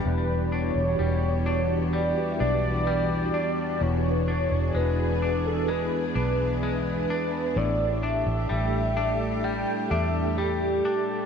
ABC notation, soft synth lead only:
X:1
M:4/4
L:1/16
Q:1/4=64
K:Edor
V:1 name="Soft synth lead"
B2 c6 d2 d6 | c4 B3 A B2 B2 B4 | d2 e6 g2 e2 G4 |]